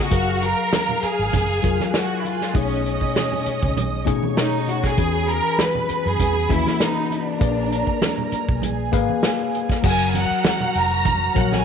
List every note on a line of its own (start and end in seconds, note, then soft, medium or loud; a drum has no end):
0.00 0.13 C#3 medium
0.00 0.14 B3 medium
0.00 0.13 F4 medium
0.00 0.44 F#4 medium
0.00 0.14 D#5 medium
0.10 0.52 F#1 medium
0.10 0.99 F#3 medium
0.10 1.00 G#4 medium
0.10 1.01 A#4 medium
0.10 1.00 F5 soft
0.10 1.90 F5 medium
0.10 1.90 F6 medium
0.10 kick loud
0.10 closed hi-hat medium
0.42 1.04 A#4 medium
0.42 closed hi-hat medium
0.42 muted conga soft
0.73 snare medium
0.73 closed hi-hat medium
0.73 muted conga soft
0.73 high conga medium
0.89 low conga medium
1.02 1.88 G#4 loud
1.02 muted fingered electric bass stroke soft
1.02 closed hi-hat medium
1.02 muted conga soft
1.19 1.31 G#1 medium
1.33 1.60 F#1 medium
1.33 kick medium
1.33 closed hi-hat medium
1.33 muted conga soft
1.33 high conga medium
1.33 low conga medium
1.62 1.78 F1 medium
1.62 2.30 F#3 medium
1.62 2.30 F4 medium
1.62 2.31 G#4 medium
1.62 2.31 A#4 medium
1.62 kick medium
1.62 closed hi-hat medium
1.62 muted conga soft
1.80 snare soft
1.80 high conga medium
1.90 1.95 G#4 medium
1.94 2.19 F#4 medium
1.94 2.53 G#5 medium
1.94 2.53 F#6 medium
1.94 snare medium
1.94 closed hi-hat medium
1.94 muted conga soft
2.21 2.26 E4 medium
2.21 muted conga soft
2.26 2.57 F4 medium
2.26 closed hi-hat medium
2.41 snare soft
2.53 2.96 B1 medium
2.53 3.43 B2 medium
2.53 3.43 A3 medium
2.53 3.43 C#4 medium
2.53 3.44 D#4 medium
2.53 3.44 G#4 medium
2.53 4.04 D#5 medium
2.53 4.04 D#6 medium
2.53 kick loud
2.53 closed hi-hat medium
2.53 muted conga soft
2.58 2.85 C#4 medium
2.86 4.04 C#4 medium
2.86 closed hi-hat medium
3.01 kick medium
3.16 snare medium
3.16 closed hi-hat medium
3.16 high conga medium
3.32 low conga medium
3.46 muted fingered electric bass stroke soft
3.46 closed hi-hat medium
3.46 muted conga soft
3.63 3.75 C#2 medium
3.63 kick medium
3.77 4.07 B1 medium
3.77 closed hi-hat medium
3.77 high conga medium
3.77 low conga medium
4.05 4.21 A1 medium
4.05 4.73 B2 medium
4.05 4.73 A3 medium
4.05 4.73 C#4 medium
4.05 4.73 D#4 medium
4.05 4.74 G#4 medium
4.05 4.96 C#5 medium
4.05 4.96 C#6 medium
4.05 kick medium
4.05 closed hi-hat medium
4.23 high conga medium
4.37 4.66 D#4 medium
4.37 snare medium
4.37 closed hi-hat medium
4.68 4.85 F#4 medium
4.68 closed hi-hat medium
4.68 muted conga soft
4.84 5.29 G#4 medium
4.84 kick medium
4.84 snare soft
4.97 5.39 E2 medium
4.97 5.86 E3 medium
4.97 7.37 B3 medium
4.97 5.86 C#4 medium
4.97 5.87 F#4 medium
4.97 5.87 G#4 medium
4.97 7.37 B5 medium
4.97 kick loud
4.97 closed hi-hat medium
4.97 muted conga soft
5.29 5.59 A#4 loud
5.29 closed hi-hat medium
5.58 6.07 B4 medium
5.58 snare medium
5.58 closed hi-hat medium
5.58 high conga medium
5.75 low conga medium
5.88 muted fingered electric bass stroke soft
5.88 closed hi-hat medium
5.88 muted conga soft
6.06 6.18 F#2 medium
6.06 6.51 G#4 medium
6.19 6.46 E2 medium
6.19 kick medium
6.19 closed hi-hat medium
6.19 high conga medium
6.19 low conga medium
6.49 6.64 D#2 medium
6.49 7.16 E3 medium
6.49 7.17 A#3 medium
6.49 7.16 C#4 medium
6.49 6.81 E4 medium
6.49 7.16 F#4 medium
6.49 kick medium
6.49 closed hi-hat medium
6.66 snare soft
6.66 high conga medium
6.80 7.12 D#4 medium
6.80 snare medium
6.80 closed hi-hat medium
7.10 8.34 D4 medium
7.10 closed hi-hat medium
7.10 muted conga soft
7.39 7.82 A#1 medium
7.39 8.29 A#3 medium
7.39 8.29 G#4 medium
7.39 8.60 A#4 medium
7.39 8.29 B4 medium
7.39 8.30 D5 medium
7.39 8.60 A#5 medium
7.39 kick loud
7.39 closed hi-hat medium
7.71 closed hi-hat medium
7.71 muted conga soft
7.87 kick medium
8.02 snare medium
8.02 closed hi-hat medium
8.02 muted conga soft
8.02 high conga medium
8.18 low conga medium
8.31 muted fingered electric bass stroke soft
8.31 closed hi-hat medium
8.31 muted conga soft
8.49 8.62 B1 medium
8.49 kick medium
8.62 8.89 A#1 medium
8.62 9.81 G#4 medium
8.62 9.81 G#5 medium
8.62 closed hi-hat medium
8.62 high conga medium
8.62 low conga medium
8.92 9.07 G#1 medium
8.92 9.59 A#3 medium
8.92 9.59 G#4 medium
8.92 9.60 B4 medium
8.92 9.60 F5 medium
8.92 kick medium
8.92 closed hi-hat medium
8.92 muted conga soft
9.09 high conga medium
9.23 snare medium
9.23 closed hi-hat medium
9.55 closed hi-hat medium
9.69 kick medium
9.69 snare soft
9.82 10.25 F#1 medium
9.82 10.72 F#3 medium
9.82 10.72 F#4 medium
9.82 11.65 F#4 medium
9.82 9.91 G#4 soft
9.82 10.73 F#5 medium
9.82 11.65 A#5 medium
9.82 11.65 F6 medium
9.82 kick loud
9.82 crash medium
9.82 muted conga soft
9.87 10.76 A#4 medium
9.87 10.14 G#5 medium
10.14 10.77 F#5 loud
10.14 closed hi-hat medium
10.14 muted conga soft
10.14 high conga soft
10.31 muted fingered electric bass stroke soft
10.44 snare loud
10.44 closed hi-hat medium
10.44 high conga medium
10.60 low conga medium
10.75 11.28 F1 medium
10.75 11.37 A#5 loud
10.75 open hi-hat medium
11.05 kick medium
11.05 closed hi-hat loud
11.05 muted conga soft
11.05 high conga medium
11.05 low conga medium
11.34 11.65 A#1 medium
11.34 11.65 F#3 medium
11.34 11.65 F#4 medium
11.34 11.65 A#4 medium
11.34 11.65 C#5 medium
11.34 kick medium
11.34 closed hi-hat medium
11.39 11.54 F#5 medium
11.52 11.65 G#5 medium
11.52 snare soft
11.52 high conga medium